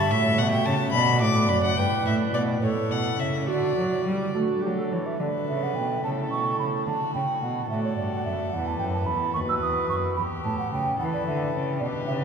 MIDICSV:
0, 0, Header, 1, 5, 480
1, 0, Start_track
1, 0, Key_signature, 2, "major"
1, 0, Tempo, 553506
1, 102, Time_signature, 6, 3, 24, 8
1, 2023, Tempo, 572519
1, 4903, Tempo, 548948
1, 10565, End_track
2, 0, Start_track
2, 0, Title_t, "Flute"
2, 0, Program_c, 0, 73
2, 0, Note_on_c, 0, 76, 94
2, 790, Note_off_c, 0, 76, 0
2, 815, Note_on_c, 0, 74, 78
2, 1522, Note_off_c, 0, 74, 0
2, 1534, Note_on_c, 0, 71, 76
2, 2244, Note_off_c, 0, 71, 0
2, 2266, Note_on_c, 0, 69, 72
2, 2982, Note_on_c, 0, 66, 58
2, 2995, Note_off_c, 0, 69, 0
2, 3454, Note_off_c, 0, 66, 0
2, 3704, Note_on_c, 0, 66, 65
2, 3941, Note_on_c, 0, 67, 66
2, 3953, Note_off_c, 0, 66, 0
2, 4065, Note_off_c, 0, 67, 0
2, 4070, Note_on_c, 0, 69, 67
2, 4120, Note_off_c, 0, 69, 0
2, 4187, Note_on_c, 0, 73, 59
2, 4311, Note_on_c, 0, 76, 64
2, 4324, Note_off_c, 0, 73, 0
2, 4429, Note_on_c, 0, 74, 55
2, 4442, Note_off_c, 0, 76, 0
2, 4662, Note_off_c, 0, 74, 0
2, 4667, Note_on_c, 0, 76, 56
2, 4790, Note_on_c, 0, 78, 53
2, 4803, Note_off_c, 0, 76, 0
2, 4893, Note_on_c, 0, 79, 55
2, 4905, Note_off_c, 0, 78, 0
2, 5134, Note_off_c, 0, 79, 0
2, 5139, Note_on_c, 0, 81, 58
2, 5195, Note_off_c, 0, 81, 0
2, 5377, Note_on_c, 0, 85, 62
2, 5621, Note_off_c, 0, 85, 0
2, 5626, Note_on_c, 0, 83, 57
2, 5681, Note_off_c, 0, 83, 0
2, 5868, Note_on_c, 0, 81, 62
2, 6104, Note_off_c, 0, 81, 0
2, 6109, Note_on_c, 0, 79, 57
2, 6343, Note_off_c, 0, 79, 0
2, 6348, Note_on_c, 0, 78, 53
2, 6588, Note_off_c, 0, 78, 0
2, 6592, Note_on_c, 0, 76, 63
2, 6708, Note_off_c, 0, 76, 0
2, 6714, Note_on_c, 0, 73, 52
2, 6823, Note_off_c, 0, 73, 0
2, 6829, Note_on_c, 0, 74, 57
2, 6881, Note_off_c, 0, 74, 0
2, 6963, Note_on_c, 0, 78, 55
2, 7071, Note_off_c, 0, 78, 0
2, 7076, Note_on_c, 0, 76, 57
2, 7324, Note_on_c, 0, 78, 56
2, 7337, Note_off_c, 0, 76, 0
2, 7442, Note_on_c, 0, 81, 57
2, 7455, Note_off_c, 0, 78, 0
2, 7541, Note_off_c, 0, 81, 0
2, 7546, Note_on_c, 0, 79, 62
2, 7599, Note_off_c, 0, 79, 0
2, 7676, Note_on_c, 0, 81, 61
2, 7784, Note_on_c, 0, 83, 64
2, 7797, Note_off_c, 0, 81, 0
2, 8018, Note_off_c, 0, 83, 0
2, 8024, Note_on_c, 0, 85, 68
2, 8076, Note_off_c, 0, 85, 0
2, 8156, Note_on_c, 0, 88, 64
2, 8208, Note_off_c, 0, 88, 0
2, 8271, Note_on_c, 0, 87, 74
2, 8504, Note_off_c, 0, 87, 0
2, 8509, Note_on_c, 0, 85, 67
2, 8564, Note_off_c, 0, 85, 0
2, 8750, Note_on_c, 0, 83, 69
2, 8805, Note_off_c, 0, 83, 0
2, 8991, Note_on_c, 0, 81, 64
2, 9111, Note_off_c, 0, 81, 0
2, 9115, Note_on_c, 0, 78, 63
2, 9233, Note_off_c, 0, 78, 0
2, 9238, Note_on_c, 0, 79, 62
2, 9465, Note_off_c, 0, 79, 0
2, 9470, Note_on_c, 0, 78, 70
2, 9523, Note_off_c, 0, 78, 0
2, 9593, Note_on_c, 0, 74, 60
2, 9710, Note_off_c, 0, 74, 0
2, 9714, Note_on_c, 0, 76, 65
2, 9946, Note_off_c, 0, 76, 0
2, 10175, Note_on_c, 0, 74, 64
2, 10230, Note_off_c, 0, 74, 0
2, 10417, Note_on_c, 0, 76, 67
2, 10469, Note_off_c, 0, 76, 0
2, 10538, Note_on_c, 0, 78, 70
2, 10565, Note_off_c, 0, 78, 0
2, 10565, End_track
3, 0, Start_track
3, 0, Title_t, "Violin"
3, 0, Program_c, 1, 40
3, 0, Note_on_c, 1, 81, 89
3, 94, Note_on_c, 1, 76, 103
3, 107, Note_off_c, 1, 81, 0
3, 331, Note_on_c, 1, 78, 88
3, 344, Note_off_c, 1, 76, 0
3, 442, Note_off_c, 1, 78, 0
3, 447, Note_on_c, 1, 79, 83
3, 569, Note_on_c, 1, 81, 92
3, 582, Note_off_c, 1, 79, 0
3, 798, Note_off_c, 1, 81, 0
3, 804, Note_on_c, 1, 83, 96
3, 1045, Note_off_c, 1, 83, 0
3, 1051, Note_on_c, 1, 86, 93
3, 1289, Note_on_c, 1, 83, 92
3, 1302, Note_off_c, 1, 86, 0
3, 1413, Note_off_c, 1, 83, 0
3, 1424, Note_on_c, 1, 78, 85
3, 1542, Note_on_c, 1, 79, 91
3, 1555, Note_off_c, 1, 78, 0
3, 1782, Note_off_c, 1, 79, 0
3, 1791, Note_on_c, 1, 76, 86
3, 1860, Note_off_c, 1, 76, 0
3, 2030, Note_on_c, 1, 74, 79
3, 2097, Note_off_c, 1, 74, 0
3, 2272, Note_on_c, 1, 73, 76
3, 2508, Note_on_c, 1, 78, 80
3, 2521, Note_off_c, 1, 73, 0
3, 2748, Note_on_c, 1, 76, 67
3, 2760, Note_off_c, 1, 78, 0
3, 2986, Note_off_c, 1, 76, 0
3, 2994, Note_on_c, 1, 74, 73
3, 3701, Note_off_c, 1, 74, 0
3, 4434, Note_on_c, 1, 71, 55
3, 5142, Note_on_c, 1, 69, 45
3, 5156, Note_off_c, 1, 71, 0
3, 5856, Note_off_c, 1, 69, 0
3, 5862, Note_on_c, 1, 66, 48
3, 6576, Note_off_c, 1, 66, 0
3, 6584, Note_on_c, 1, 69, 54
3, 8045, Note_on_c, 1, 71, 51
3, 8058, Note_off_c, 1, 69, 0
3, 8739, Note_off_c, 1, 71, 0
3, 8744, Note_on_c, 1, 67, 54
3, 9451, Note_off_c, 1, 67, 0
3, 9459, Note_on_c, 1, 69, 55
3, 10166, Note_off_c, 1, 69, 0
3, 10182, Note_on_c, 1, 67, 59
3, 10565, Note_off_c, 1, 67, 0
3, 10565, End_track
4, 0, Start_track
4, 0, Title_t, "Pipe organ"
4, 0, Program_c, 2, 19
4, 101, Note_on_c, 2, 57, 47
4, 102, Note_on_c, 2, 45, 63
4, 107, Note_on_c, 2, 66, 48
4, 113, Note_on_c, 2, 73, 46
4, 317, Note_off_c, 2, 45, 0
4, 337, Note_on_c, 2, 47, 57
4, 555, Note_off_c, 2, 47, 0
4, 581, Note_on_c, 2, 49, 61
4, 784, Note_off_c, 2, 57, 0
4, 787, Note_off_c, 2, 66, 0
4, 791, Note_off_c, 2, 73, 0
4, 796, Note_off_c, 2, 49, 0
4, 825, Note_on_c, 2, 47, 61
4, 826, Note_on_c, 2, 66, 49
4, 833, Note_on_c, 2, 74, 46
4, 1037, Note_off_c, 2, 47, 0
4, 1053, Note_on_c, 2, 45, 61
4, 1271, Note_off_c, 2, 45, 0
4, 1294, Note_on_c, 2, 42, 55
4, 1507, Note_off_c, 2, 66, 0
4, 1510, Note_off_c, 2, 74, 0
4, 1512, Note_off_c, 2, 42, 0
4, 1536, Note_on_c, 2, 43, 56
4, 1541, Note_on_c, 2, 64, 46
4, 1546, Note_on_c, 2, 74, 42
4, 1755, Note_off_c, 2, 43, 0
4, 1775, Note_on_c, 2, 45, 54
4, 1996, Note_off_c, 2, 45, 0
4, 2021, Note_on_c, 2, 47, 56
4, 2228, Note_off_c, 2, 64, 0
4, 2231, Note_off_c, 2, 74, 0
4, 2236, Note_off_c, 2, 47, 0
4, 2260, Note_on_c, 2, 45, 56
4, 2263, Note_on_c, 2, 64, 46
4, 2267, Note_on_c, 2, 69, 43
4, 2476, Note_off_c, 2, 45, 0
4, 2497, Note_on_c, 2, 47, 53
4, 2715, Note_off_c, 2, 47, 0
4, 2742, Note_on_c, 2, 49, 49
4, 2950, Note_off_c, 2, 64, 0
4, 2952, Note_off_c, 2, 69, 0
4, 2959, Note_off_c, 2, 49, 0
4, 2984, Note_on_c, 2, 50, 53
4, 3202, Note_off_c, 2, 50, 0
4, 3225, Note_on_c, 2, 54, 52
4, 3444, Note_off_c, 2, 54, 0
4, 3471, Note_on_c, 2, 55, 51
4, 3687, Note_off_c, 2, 55, 0
4, 3709, Note_on_c, 2, 57, 51
4, 3714, Note_on_c, 2, 62, 43
4, 3717, Note_on_c, 2, 69, 46
4, 3927, Note_off_c, 2, 57, 0
4, 3953, Note_on_c, 2, 54, 48
4, 4170, Note_off_c, 2, 54, 0
4, 4183, Note_on_c, 2, 52, 49
4, 4402, Note_off_c, 2, 62, 0
4, 4404, Note_off_c, 2, 52, 0
4, 4404, Note_off_c, 2, 69, 0
4, 4425, Note_on_c, 2, 50, 37
4, 4429, Note_on_c, 2, 62, 29
4, 4438, Note_on_c, 2, 69, 28
4, 4641, Note_off_c, 2, 50, 0
4, 4664, Note_on_c, 2, 49, 37
4, 4878, Note_off_c, 2, 49, 0
4, 4899, Note_on_c, 2, 47, 38
4, 5110, Note_off_c, 2, 62, 0
4, 5115, Note_off_c, 2, 69, 0
4, 5121, Note_off_c, 2, 47, 0
4, 5142, Note_on_c, 2, 57, 30
4, 5143, Note_on_c, 2, 49, 37
4, 5150, Note_on_c, 2, 64, 31
4, 5154, Note_on_c, 2, 69, 30
4, 5363, Note_off_c, 2, 49, 0
4, 5383, Note_on_c, 2, 47, 36
4, 5605, Note_off_c, 2, 47, 0
4, 5628, Note_on_c, 2, 49, 34
4, 5837, Note_off_c, 2, 57, 0
4, 5841, Note_off_c, 2, 64, 0
4, 5843, Note_off_c, 2, 69, 0
4, 5848, Note_off_c, 2, 49, 0
4, 5875, Note_on_c, 2, 50, 39
4, 6092, Note_off_c, 2, 50, 0
4, 6118, Note_on_c, 2, 49, 37
4, 6333, Note_off_c, 2, 49, 0
4, 6359, Note_on_c, 2, 47, 40
4, 6575, Note_off_c, 2, 47, 0
4, 6601, Note_on_c, 2, 45, 41
4, 6601, Note_on_c, 2, 57, 32
4, 6608, Note_on_c, 2, 66, 32
4, 6609, Note_on_c, 2, 74, 37
4, 6817, Note_off_c, 2, 45, 0
4, 6817, Note_off_c, 2, 57, 0
4, 6841, Note_on_c, 2, 43, 39
4, 7058, Note_off_c, 2, 43, 0
4, 7082, Note_on_c, 2, 42, 38
4, 7292, Note_off_c, 2, 66, 0
4, 7293, Note_off_c, 2, 74, 0
4, 7298, Note_off_c, 2, 42, 0
4, 7317, Note_on_c, 2, 40, 37
4, 7328, Note_on_c, 2, 64, 29
4, 7329, Note_on_c, 2, 71, 31
4, 7536, Note_off_c, 2, 40, 0
4, 7560, Note_on_c, 2, 42, 39
4, 7778, Note_off_c, 2, 42, 0
4, 7805, Note_on_c, 2, 40, 41
4, 8011, Note_off_c, 2, 64, 0
4, 8011, Note_off_c, 2, 71, 0
4, 8020, Note_off_c, 2, 40, 0
4, 8039, Note_on_c, 2, 39, 41
4, 8048, Note_on_c, 2, 66, 33
4, 8049, Note_on_c, 2, 71, 32
4, 8256, Note_off_c, 2, 39, 0
4, 8281, Note_on_c, 2, 40, 40
4, 8497, Note_off_c, 2, 40, 0
4, 8518, Note_on_c, 2, 42, 43
4, 8728, Note_off_c, 2, 66, 0
4, 8728, Note_off_c, 2, 71, 0
4, 8735, Note_off_c, 2, 42, 0
4, 8760, Note_on_c, 2, 40, 41
4, 8974, Note_off_c, 2, 40, 0
4, 9001, Note_on_c, 2, 45, 41
4, 9213, Note_off_c, 2, 45, 0
4, 9224, Note_on_c, 2, 49, 46
4, 9443, Note_off_c, 2, 49, 0
4, 9468, Note_on_c, 2, 52, 45
4, 9471, Note_on_c, 2, 64, 37
4, 9474, Note_on_c, 2, 71, 41
4, 9685, Note_off_c, 2, 52, 0
4, 9710, Note_on_c, 2, 50, 46
4, 9925, Note_off_c, 2, 50, 0
4, 9952, Note_on_c, 2, 49, 44
4, 10151, Note_off_c, 2, 64, 0
4, 10153, Note_off_c, 2, 71, 0
4, 10165, Note_off_c, 2, 49, 0
4, 10184, Note_on_c, 2, 47, 44
4, 10189, Note_on_c, 2, 62, 36
4, 10195, Note_on_c, 2, 71, 37
4, 10400, Note_off_c, 2, 47, 0
4, 10425, Note_on_c, 2, 49, 45
4, 10565, Note_off_c, 2, 49, 0
4, 10565, Note_off_c, 2, 62, 0
4, 10565, Note_off_c, 2, 71, 0
4, 10565, End_track
5, 0, Start_track
5, 0, Title_t, "Cello"
5, 0, Program_c, 3, 42
5, 0, Note_on_c, 3, 43, 71
5, 91, Note_on_c, 3, 45, 75
5, 104, Note_off_c, 3, 43, 0
5, 335, Note_on_c, 3, 47, 69
5, 348, Note_off_c, 3, 45, 0
5, 570, Note_off_c, 3, 47, 0
5, 575, Note_on_c, 3, 49, 71
5, 645, Note_off_c, 3, 49, 0
5, 806, Note_on_c, 3, 47, 78
5, 1051, Note_on_c, 3, 45, 71
5, 1064, Note_off_c, 3, 47, 0
5, 1290, Note_on_c, 3, 42, 65
5, 1303, Note_off_c, 3, 45, 0
5, 1524, Note_off_c, 3, 42, 0
5, 1529, Note_on_c, 3, 43, 68
5, 1599, Note_off_c, 3, 43, 0
5, 1774, Note_on_c, 3, 45, 72
5, 2015, Note_off_c, 3, 45, 0
5, 2020, Note_on_c, 3, 47, 67
5, 2248, Note_off_c, 3, 47, 0
5, 2253, Note_on_c, 3, 45, 67
5, 2320, Note_off_c, 3, 45, 0
5, 2503, Note_on_c, 3, 47, 63
5, 2727, Note_off_c, 3, 47, 0
5, 2732, Note_on_c, 3, 49, 55
5, 2983, Note_on_c, 3, 50, 60
5, 2995, Note_off_c, 3, 49, 0
5, 3217, Note_off_c, 3, 50, 0
5, 3222, Note_on_c, 3, 54, 65
5, 3453, Note_off_c, 3, 54, 0
5, 3458, Note_on_c, 3, 55, 61
5, 3700, Note_off_c, 3, 55, 0
5, 3707, Note_on_c, 3, 57, 63
5, 3774, Note_off_c, 3, 57, 0
5, 3949, Note_on_c, 3, 54, 57
5, 4195, Note_on_c, 3, 52, 59
5, 4208, Note_off_c, 3, 54, 0
5, 4420, Note_off_c, 3, 52, 0
5, 4425, Note_on_c, 3, 50, 43
5, 4492, Note_off_c, 3, 50, 0
5, 4665, Note_on_c, 3, 49, 44
5, 4897, Note_off_c, 3, 49, 0
5, 4902, Note_on_c, 3, 47, 44
5, 5133, Note_off_c, 3, 47, 0
5, 5139, Note_on_c, 3, 49, 46
5, 5381, Note_off_c, 3, 49, 0
5, 5385, Note_on_c, 3, 47, 43
5, 5621, Note_off_c, 3, 47, 0
5, 5626, Note_on_c, 3, 49, 40
5, 5696, Note_off_c, 3, 49, 0
5, 5867, Note_on_c, 3, 50, 46
5, 5937, Note_off_c, 3, 50, 0
5, 6109, Note_on_c, 3, 49, 44
5, 6179, Note_off_c, 3, 49, 0
5, 6352, Note_on_c, 3, 47, 43
5, 6583, Note_off_c, 3, 47, 0
5, 6588, Note_on_c, 3, 45, 49
5, 6830, Note_off_c, 3, 45, 0
5, 6834, Note_on_c, 3, 43, 44
5, 7073, Note_off_c, 3, 43, 0
5, 7079, Note_on_c, 3, 42, 41
5, 7149, Note_off_c, 3, 42, 0
5, 7321, Note_on_c, 3, 40, 50
5, 7555, Note_off_c, 3, 40, 0
5, 7560, Note_on_c, 3, 42, 47
5, 7797, Note_off_c, 3, 42, 0
5, 7802, Note_on_c, 3, 40, 46
5, 8040, Note_on_c, 3, 39, 51
5, 8054, Note_off_c, 3, 40, 0
5, 8270, Note_off_c, 3, 39, 0
5, 8275, Note_on_c, 3, 40, 46
5, 8504, Note_off_c, 3, 40, 0
5, 8509, Note_on_c, 3, 42, 46
5, 8749, Note_off_c, 3, 42, 0
5, 8755, Note_on_c, 3, 40, 49
5, 8825, Note_off_c, 3, 40, 0
5, 8991, Note_on_c, 3, 45, 55
5, 9061, Note_off_c, 3, 45, 0
5, 9223, Note_on_c, 3, 49, 48
5, 9463, Note_off_c, 3, 49, 0
5, 9468, Note_on_c, 3, 52, 56
5, 9704, Note_off_c, 3, 52, 0
5, 9708, Note_on_c, 3, 50, 51
5, 9943, Note_off_c, 3, 50, 0
5, 9947, Note_on_c, 3, 49, 51
5, 10189, Note_on_c, 3, 47, 56
5, 10202, Note_off_c, 3, 49, 0
5, 10412, Note_off_c, 3, 47, 0
5, 10417, Note_on_c, 3, 49, 57
5, 10565, Note_off_c, 3, 49, 0
5, 10565, End_track
0, 0, End_of_file